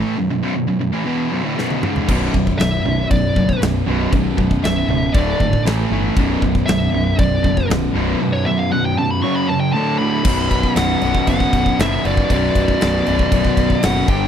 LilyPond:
<<
  \new Staff \with { instrumentName = "Lead electric guitar" } { \time 4/4 \key b \minor \tempo 4 = 118 << { r1 | r1 | r1 | r1 |
r2. a''8 b''8~ | b''4 fis''4 fis''4 e''8 d''8 | d''4 d''2 fis''8 g''8 | } \\ { r1 | r4 e''4 d''4 r4 | r4 e''4 d''4 r4 | r4 e''4 d''4 r4 |
r16 cis''16 e''16 eis''16 fis''16 g''16 a''16 b''16 cis'''16 b''16 a''16 g''16 a''8. r16 | r1 | r1 | } >> }
  \new Staff \with { instrumentName = "Distorted electric guitar" } { \clef bass \time 4/4 \key b \minor <a, e a>16 <b,, fis,>16 <b,, fis,>16 <b,, fis,>16 <b,, fis,>16 <b,, fis,>16 <b,, fis,>16 <a, e>16 <e, b, e>8 <b,, fis,>16 <d, a,>16 <b,, fis, b,>8 <cis, gis, cis>8 | <b,, fis, b,>8 <b,, fis,>8 <b,, fis,>8 <b,, fis,>8 <b,, fis,>8 <b,, fis,>8 <b,, fis,>8 <b,, fis, b,>8 | <b,, fis,>8 <b,, fis,>8 <b,, fis,>8 <b,, fis,>8 <d, a, d>8 <d, a,>8 <a, e a>8 <a, e a>8 | <b,, fis, b,>8 <b,, fis,>8 <b,, fis,>8 <b,, fis,>8 <b,, fis,>8 <b,, fis,>8 <b,, fis,>8 <b,, fis, b,>8 |
<b,, fis,>8 <b,, fis,>8 <b,, fis,>8 <b,, fis,>8 <fis, cis fis>8 <fis, cis>8 <d, a, d>8 <d, a, d>8 | <b,, fis, b,>4 <b,, fis, b,>8 <b,, fis, b,>8 <b,, fis, b,>4 <b,, fis, b,>8 <b,, fis, b,>8 | <b,, fis, b,>4 <b,, fis, b,>8 <b,, fis, b,>8 <b,, fis, b,>4 <b,, fis, b,>8 <g, d g>8 | }
  \new Staff \with { instrumentName = "Distorted electric guitar" } { \clef bass \time 4/4 \key b \minor <a, e a>16 <b,, fis,>16 <b,, fis,>16 <b,, fis,>16 <b,, fis,>16 <b,, fis,>16 <b,, fis,>16 <a, e>16 <e, b, e>8 <b,, fis,>16 <d, a,>16 <b,, fis, b,>8 <cis, gis, cis>8 | <b,, fis, b,>8 <b,, fis,>8 <b,, fis,>8 <b,, fis,>8 <b,, fis,>8 <b,, fis,>8 <b,, fis,>8 <b,, fis, b,>8 | <b,, fis,>8 <b,, fis,>8 <b,, fis,>8 <b,, fis,>8 <d, a, d>8 <d, a,>8 <a, e a>8 <a, e a>8 | <b,, fis, b,>8 <b,, fis,>8 <b,, fis,>8 <b,, fis,>8 <b,, fis,>8 <b,, fis,>8 <b,, fis,>8 <b,, fis, b,>8 |
<b,, fis,>8 <b,, fis,>8 <b,, fis,>8 <b,, fis,>8 <fis, cis fis>8 <fis, cis>8 <d, a, d>8 <d, a, d>8 | <b,, fis, b,>4 <b,, fis, b,>8 <b,, fis, b,>8 <b,, fis, b,>4 <b,, fis, b,>8 <b,, fis, b,>8 | <b,, fis, b,>4 <b,, fis, b,>8 <b,, fis, b,>8 <b,, fis, b,>4 <b,, fis, b,>8 <g, d g>8 | }
  \new Staff \with { instrumentName = "Distorted electric guitar" } { \clef bass \time 4/4 \key b \minor r1 | <b,, fis, b,>2.~ <b,, fis, b,>8 <b,, fis, b,>8 | <b,, fis, b,>2 <d, a, d>4 <a, e a>4 | <b,, fis, b,>2.~ <b,, fis, b,>8 <b,, fis, b,>8 |
<b,, fis, b,>2 <fis, cis fis>4 <d, a, d>4 | <b,, fis, b,>4. <b,, fis, b,>4. <b,, fis, b,>4 | <b,, fis, b,>4. <b,, fis, b,>4. <b,, fis, b,>8 <g, d g>8 | }
  \new Staff \with { instrumentName = "Picked electric bass" } { \clef bass \time 4/4 \key b \minor r1 | b,,,8 b,,,8 b,,,8 b,,,8 b,,,8 fis,,8 b,,,8 b,,,8 | b,,,8 b,,,8 b,,,8 cis,,8 d,,8 gis,,8 a,,8 g,,8 | b,,,8 b,,,8 b,,,8 b,,,8 b,,,8 fis,,8 b,,,8 b,,,8 |
r1 | b,,,4 b,,,8 b,,,8 fis,,8 b,,,8 fis,,8 fis,,8 | b,,,8 b,,,8 b,,,8 b,,,8 b,,,8 b,,,8 fis,,8 g,,8 | }
  \new DrumStaff \with { instrumentName = "Drums" } \drummode { \time 4/4 r4 r4 r4 sn16 tommh16 toml16 tomfh16 | <cymc bd>8 bd16 bd16 <cymc sn>4 <cymc bd>8 bd16 bd16 <cymc sn>4 | <cymc bd>8 bd16 bd16 <cymc sn>4 <cymc bd>8 bd16 bd16 <cymc sn>4 | <cymc bd>8 bd16 bd16 <cymc sn>4 <cymc bd>8 bd16 bd16 <cymc sn>4 |
r4 r4 r4 r4 | <cymc bd>8 <cymc bd>16 bd16 <cymc sn>8 cymc16 bd16 <cymc bd>16 bd16 <cymc bd>16 bd16 <cymc sn>8 cymc16 bd16 | <cymc bd>8 <cymc bd>16 bd16 <cymc sn>8 cymc16 bd16 <cymc bd>16 bd16 <cymc bd>16 bd16 <cymc sn>8 <cymc bd>8 | }
>>